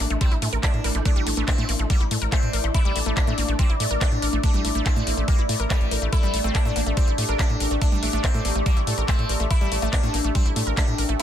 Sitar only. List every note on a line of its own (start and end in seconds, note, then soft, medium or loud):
0.21 0.33 C4 medium
0.63 0.87 D4 medium
1.05 1.29 D4 loud
1.48 1.71 C4 loud
1.90 2.02 A#3 medium
2.32 2.56 C4 medium
2.75 2.98 E4 loud
3.17 3.40 D4 medium
3.59 3.71 C4 medium
4.01 4.25 D4 medium
4.44 4.67 D4 loud
4.86 5.09 C4 medium
5.28 5.40 A#3 medium
5.70 5.94 G3 medium
6.13 6.36 E4 loud
6.55 6.78 D4 loud
6.97 7.09 C4 medium
7.39 7.63 D4 medium
7.82 8.05 D4 loud
8.24 8.47 C4 loud
8.66 8.78 A#3 medium
9.08 9.32 C4 medium
9.51 9.74 E4 loud
9.93 10.16 D4 loud
10.35 10.47 C4 medium
10.77 11.01 D4 medium